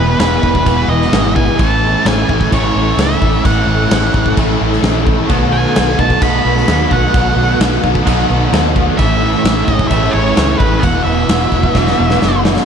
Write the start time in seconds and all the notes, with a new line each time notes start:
Already playing: E1 E2 B2 E3 G#3 B3 E4 G#4 B4
0.00 E3
0.19 E1 E3 G#3 B3 E4 G#4 B4, snare, crash
0.42 E1 E2 B2 E3 G#3 B3 E4, kick
0.55 kick
0.65 E1 E2 B2 E3 G#3 B3 E4 G#4, kick, crash
0.88 E1 E3 G#3 B3 E4 G#4 D#5
1.02 snare
1.12 G#1 E2 B2 E3 G#3 B3 E4 G#4, snare, crash
1.35 D#3 E3 G#3 B3 E4 G#4 G#5, kick
1.59 A1 A2 E3 A3 C#4 E4 A4 A5 C#6, kick, crash
1.82 A3 C#4 E4
2.05 A1 E3 A3 C#4 E4 G#5, snare, crash
2.28 A1 A2 E3 A3 C#4 E4, kick
2.41 kick
2.51 A1 A2 E3 A3 C#4 E4 C#5, kick, crash
2.73 A1 A3 C#4 E4
2.97 C#2 A2 E3 A3 C#4 E4 E5, snare, crash
3.20 A1 A3 C#4 E4, kick
3.44 A1 A2 E3 A3 C#4 E4 F#5, kick, crash
3.67 A1 A3 C#4 E4
3.90 A1 E3 A3 C#4 E4, snare, crash
4.13 A1 A2 E3 A3 C#4 E4, kick
4.26 kick
4.36 A1 A2 E3 A3 C#4 E4, kick, crash
4.59 A1 A3 C#4 E4
4.73 snare
4.82 A#1 A2 E3 A3 C#4 E4, snare, crash
5.06 G#3 A3 C#4 E4, kick
5.29 B1 B2 D#3 F#3 A3 B3 F#4 F#5 B5 D#6, kick, crash
5.52 A3 B3 F#4 G#5
5.76 B1 D#3 A3 B3 F#4 A4, snare, crash
5.99 B1 B2 D#3 A3 B3 D#4 F#4 A5, kick
6.10 kick
6.21 B1 B2 D#3 F#3 A3 B3 F#4 B5, kick, crash
6.44 B1 A3 B3 F#4
6.57 snare
6.67 D#2 B2 D#3 A3 B3 D#4 F#4, snare, crash
6.91 B1 A3 B3 F#4 F#5, kick
7.14 B1 B2 D#3 F#3 A3 B3 F#4, kick, crash
7.36 B1 A3 B3 F#4
7.59 B1 D#3 A3 B3 F#4 A4, snare, crash
7.73 snare
7.83 B1 B2 D#3 A3 B3 D#4 F#4, kick
7.95 kick
8.04 B1 B2 D#3 F#3 A3 B3 F#4, kick, crash
8.08 F#3
8.28 B1 A3 B3 F#4
8.51 D#2 B2 D#3 A3 B3 D#4 F#4, snare, crash
8.74 A3 B3 F#4, kick
8.98 A1 A2 E3 A3 C#4 E4 C#5 E5 G#5 E6, kick, crash
9.21 A3 C#4 E4
9.44 A1 E3 A3 C#4 E4 G#4, snare, crash
9.57 snare
9.65 A1 A2 E3 A3 C#4 E4 D#5, kick
9.79 kick
9.88 A1 A2 E3 A3 C#4 E5, kick, crash
9.92 E4
10.11 A1 C#4 E4 C#5
10.15 A3
10.36 C#2 A2 E3 A3 C#4 E4, snare, crash
10.58 A1 G#3 A3 C#4 E4 B4, kick
10.80 E1 E2 B2 E3 B3 B4 E5 F#5, kick, crash
10.84 E4 F#4
11.04 E1 E3 B3 E4 F#4 E5
11.28 E1 E3 B3 E4 F#4, snare, crash
11.41 snare
11.51 E1 E2 B2 E3 B3 E4 F#4, kick
11.63 kick
11.74 E1 E2 B2 E3 B3 E4 F#4, kick, snare
11.87 snare
11.97 E1 E3 B3 E4 F#4
12.10 snare
12.20 F#1 E2 B2 E3 B3 E4 F#4, snare
12.44 E3 B3 E4 F#4, snare
12.57 snare